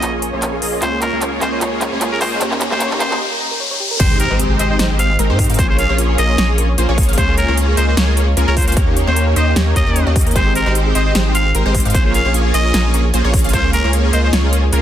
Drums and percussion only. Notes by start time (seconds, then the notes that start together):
0.02 clap, closed hi-hat
0.22 closed hi-hat
0.42 clap, closed hi-hat
0.62 open hi-hat
0.82 clap, closed hi-hat
1.02 clap, closed hi-hat
1.22 clap, closed hi-hat
1.41 clap, closed hi-hat
1.61 clap, closed hi-hat
1.81 clap, closed hi-hat
2.01 clap, closed hi-hat
2.21 clap, open hi-hat
2.41 clap, closed hi-hat
2.52 clap
2.61 clap, closed hi-hat
2.71 clap
2.80 clap, closed hi-hat
2.91 clap
3.00 clap, closed hi-hat
3.11 clap
4.00 kick, closed hi-hat, crash
4.20 closed hi-hat
4.40 closed hi-hat
4.59 closed hi-hat
4.79 snare, closed hi-hat
4.99 closed hi-hat
5.19 closed hi-hat
5.39 kick, open hi-hat
5.44 closed hi-hat
5.50 closed hi-hat
5.54 closed hi-hat
5.59 kick, closed hi-hat
5.79 closed hi-hat
5.98 closed hi-hat
6.18 closed hi-hat
6.38 snare, closed hi-hat
6.58 closed hi-hat
6.78 closed hi-hat
6.98 kick, open hi-hat
7.03 closed hi-hat
7.09 closed hi-hat
7.13 closed hi-hat
7.18 kick, closed hi-hat
7.38 closed hi-hat
7.57 closed hi-hat
7.77 closed hi-hat
7.97 snare, closed hi-hat
8.17 closed hi-hat
8.37 closed hi-hat
8.57 kick, open hi-hat
8.62 closed hi-hat
8.68 closed hi-hat
8.72 closed hi-hat
8.77 kick, closed hi-hat
8.97 closed hi-hat
9.16 closed hi-hat
9.36 closed hi-hat
9.56 snare, closed hi-hat
9.76 kick, closed hi-hat
9.96 closed hi-hat
10.16 kick, open hi-hat
10.21 closed hi-hat
10.27 closed hi-hat
10.31 closed hi-hat
10.36 kick, closed hi-hat
10.55 closed hi-hat
10.75 closed hi-hat
10.95 closed hi-hat
11.15 snare, closed hi-hat
11.35 closed hi-hat
11.55 closed hi-hat
11.75 kick, open hi-hat
11.80 closed hi-hat
11.85 closed hi-hat
11.90 closed hi-hat
11.94 kick, closed hi-hat
12.14 closed hi-hat
12.34 closed hi-hat
12.54 closed hi-hat
12.74 snare, closed hi-hat
12.94 closed hi-hat
13.14 closed hi-hat
13.34 kick, open hi-hat
13.39 closed hi-hat
13.44 closed hi-hat
13.49 closed hi-hat
13.53 kick, closed hi-hat
13.73 closed hi-hat
13.93 closed hi-hat
14.13 closed hi-hat
14.33 snare, closed hi-hat
14.53 closed hi-hat
14.73 closed hi-hat